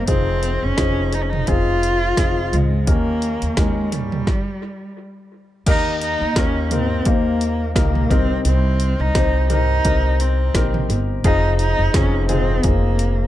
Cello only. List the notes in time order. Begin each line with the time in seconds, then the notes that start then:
0.09 C4
0.64 C#4
1.14 D#4
1.21 C#4
1.29 D#4
1.48 F4
2.53 G#3
2.88 A#3
3.58 G#3
3.94 G3
5.69 D#4
6.03 D#4
6.38 C#4
6.73 C4
7.07 A#3
7.77 A#3
8.12 C4
8.46 C4
9.00 D#4
9.51 D#4
10.21 C4
11.25 D#4
11.60 D#4
11.95 C#4
12.30 C4
12.64 A#3